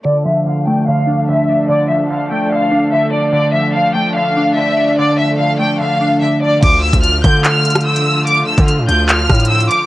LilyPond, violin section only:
\new Staff \with { instrumentName = "Violin section" } { \time 4/4 \key d \minor \tempo 4 = 146 d''8 e''8 f''8 g''8 f''4 e''4 | d''8 e''8 f''8 g''8 f''4 e''8 d''8 | d''8 e''8 f''8 g''8 f''4 e''4 | d''8 e''8 f''8 g''8 f''4 e''8 d''8 |
d'''8 e'''8 f'''8 g'''8 f'''4 e'''4 | d'''8 e'''8 f'''8 g'''8 f'''4 e'''8 d'''8 | }